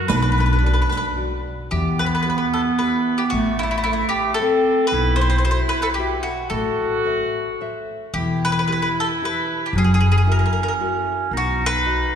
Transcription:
Already playing: F#4
0.08 B1 B3 D4 B4, riq
0.17 B4
0.22 B4
0.32 B4
0.38 B4, riq
0.46 B4
0.53 B4
0.59 F#4 B4
0.63 B4 D5
0.74 B4
0.82 B4
0.90 B4, riq
0.97 B4
1.16 F#4 B4 D5
1.71 E2 E3 B3 G4
1.99 B4
2.06 B4
2.15 B4
2.23 E4 G4 B4
2.27 B4
2.38 B4
2.54 A4
2.79 E4 G4 B4
3.18 G4
3.30 A1 A3 F#4
3.36 A3
3.59 E4
3.63 E4
3.71 E4
3.78 E4
3.84 E4 A4 B4 C5
3.93 E4
4.09 G4
4.34 A4
4.40 C4 A4 B4 C5
4.87 B4
4.92 B1 B3 E4
5.16 C5
5.21 C5
5.30 C5
5.38 C5
5.45 E4 F#4 B4 C5 E5
5.51 C5
5.69 B4
5.82 A4 B4
5.94 F#4 G4
5.98 B4 E5
6.23 F#4
6.50 A1 A3 F#4 A4
7.05 A4 C5 E5
7.61 A4 C5 E5
8.14 E1 E3 E4 G4
8.45 B4
8.52 B4
8.59 B4
8.68 E4 G4 B4
8.72 B4
8.82 B4
9.00 A4
9.22 E4 G4 B4
9.66 G4
9.73 F#1 F#3 C#4
9.78 G#4
9.84 G#4
9.94 G#4
10.00 G#4
10.12 G#4
10.18 G#4
10.27 E4 F#4 A#4
10.32 A#4
10.39 A#4
10.46 A#4
10.53 A#4
10.63 A#4
10.68 A#4
10.80 E4 F#4 A#4
11.31 B1 B3 D#4
11.37 F#4
11.66 B4
11.85 F#4 B4 D#5

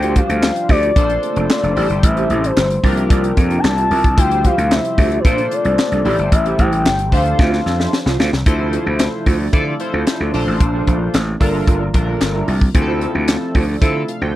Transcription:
Already playing: D2 C3 F3 G3 D4 F4 G4 C5 G5
0.02 F4 G4 C5, closed hi-hat
0.10 G5
0.16 F4 G4 C5 F5, kick, closed hi-hat
0.29 D2, closed hi-hat
0.42 muted clean electric guitar stroke, snare, clap
0.56 muted clean electric guitar stroke, closed hi-hat
0.69 D2 F4 G4 C5 D5, kick, open hi-hat
0.83 F4 G4 D5, closed hi-hat
0.96 A#1 A3 A#3 D4 F4 A4 C5, kick, closed hi-hat
1.09 muted clean electric guitar stroke, closed hi-hat
1.23 muted clean electric guitar stroke, closed hi-hat
1.36 F1 D4 A4 C5, closed hi-hat
1.50 D5, snare, clap
1.63 F1 D4 A4 D5, closed hi-hat
1.76 A1 C3 G3 E4 G4 A4 C5 D5, open hi-hat
1.90 G1, muted clean electric guitar stroke, closed hi-hat
2.03 A1 E5, muted clean electric guitar stroke, kick, closed hi-hat
2.16 E4 G4 C5, closed hi-hat
2.30 A1 E4 G4 C5, closed hi-hat
2.44 C5, muted clean electric guitar stroke, closed hi-hat
2.57 G1, muted clean electric guitar stroke, snare, clap
2.70 muted clean electric guitar stroke, closed hi-hat
2.83 C2 F3 A#3 D4 F4 G4 A#4 D5, kick, open hi-hat
2.97 F4 A#4 E5, closed hi-hat
3.10 C2 F4 A#4 D5, kick, closed hi-hat
3.24 muted clean electric guitar stroke, closed hi-hat
3.37 F2, muted clean electric guitar stroke, kick, closed hi-hat
3.50 F4 A#4 D5, closed hi-hat
3.58 A#5
3.64 C2 A5, muted clean electric guitar stroke, snare, clap
3.77 F4 A#4 E5, closed hi-hat
3.91 C2 F4 A#4 E5, open hi-hat
4.04 muted clean electric guitar stroke, kick, closed hi-hat
4.17 D2 F3 G3 E4 F4 G4 C5 E5 G5, muted clean electric guitar stroke, kick, closed hi-hat
4.31 F4 G4 C5, closed hi-hat
4.44 F4 G4 C5 F5, kick, closed hi-hat
4.58 D2, closed hi-hat
4.72 E5, snare, clap
4.85 muted clean electric guitar stroke, closed hi-hat
4.98 D2 F4 G4 C5, kick, open hi-hat
5.12 F4 G4 D5, closed hi-hat
5.20 B4
5.24 A#2 A3 A#3 D4 F4 A4 C5, kick, closed hi-hat
5.38 muted clean electric guitar stroke, closed hi-hat
5.51 D5, muted clean electric guitar stroke, closed hi-hat
5.65 C2 D4 A4 C5, closed hi-hat
5.79 muted clean electric guitar stroke, snare, clap
5.92 C2 D4 A4 D5, closed hi-hat
6.05 A1 G3 E4 G4 A4 C5 D5, open hi-hat
6.19 G1, muted clean electric guitar stroke, closed hi-hat
6.32 A1 E5, muted clean electric guitar stroke, kick, closed hi-hat
6.46 E4 G4 C5, closed hi-hat
6.59 A1 E4 G4 C5 G5, kick, closed hi-hat
6.72 muted clean electric guitar stroke, closed hi-hat
6.85 G1, muted clean electric guitar stroke, snare, clap
6.99 muted clean electric guitar stroke, closed hi-hat
7.12 D2 D3 F3 C4 D4 F4 A4 C5 E5 F5, kick, open hi-hat
7.26 F4 C5 F5, closed hi-hat
7.39 D2 F4 C5 E5, kick, snare
7.53 muted clean electric guitar stroke, snare
7.66 F2, muted clean electric guitar stroke, snare
7.79 F4 C5 E5, snare
7.93 muted clean electric guitar stroke, snare
8.06 C2 F4 C5 F5, snare
8.19 D2 F4 C5 F5, snare
8.33 C2, muted clean electric guitar stroke, snare
8.46 D2 C3 F3 A3 D4 E4 F4 A4 C5, muted clean electric guitar stroke, kick, closed hi-hat
8.59 F4 A4 C5
8.73 F4 A4 C5, closed hi-hat
8.86 D2, muted clean electric guitar stroke
8.99 snare, clap, closed hi-hat
9.13 muted clean electric guitar stroke
9.26 D2 F4 A4 C5, kick, open hi-hat
9.39 F4 A4 D5
9.53 D3 E4 F4 A4 C5 D5, kick, closed hi-hat
9.67 muted clean electric guitar stroke
9.80 E4 F4 A4 C5, muted clean electric guitar stroke, closed hi-hat
9.93 D2 F4 A4 C5
10.07 snare, clap, closed hi-hat
10.20 D2 F4 A4 D5
10.33 A#1 A#3 D4 F4 A4 C5 D5, open hi-hat
10.47 A1, muted clean electric guitar stroke
10.60 A#1, muted clean electric guitar stroke, kick, closed hi-hat
10.73 D4 A4 C5
10.87 A#1 D4 A4 C5, kick, closed hi-hat
11.14 A1, muted clean electric guitar stroke, snare, clap, closed hi-hat
11.27 muted clean electric guitar stroke
11.40 G1 D3 G3 A#3 D4 F4 A4 A#4 D5, kick, open hi-hat
11.54 F4 A#4 E5
11.67 G1 F4 A#4 D5, kick, closed hi-hat
11.81 muted clean electric guitar stroke
11.94 A#1 D4 F4 A4 A#4, muted clean electric guitar stroke, kick, closed hi-hat
12.08 F4 A#4 D5
12.21 G1, snare, clap, closed hi-hat
12.34 F4 A#4 E5
12.47 C2 F4 A#4 E5, open hi-hat
12.61 muted clean electric guitar stroke, kick
12.74 D2 C3 F3 A3 C4 D4 E4 F4 G#4, muted clean electric guitar stroke, kick, closed hi-hat
12.82 A4
12.88 F4 A4 C5
13.01 F4 A4 C5, closed hi-hat
13.15 D2, muted clean electric guitar stroke
13.28 muted clean electric guitar stroke, snare, clap, closed hi-hat
13.42 muted clean electric guitar stroke
13.55 D2 F4 A4 C5, kick, open hi-hat
13.68 F4 A4 D5
13.81 D3 C4 E4 F4 A4 C5, kick, closed hi-hat
13.95 muted clean electric guitar stroke
14.08 F5, muted clean electric guitar stroke, closed hi-hat
14.21 D2 F4 A4 C5 G5

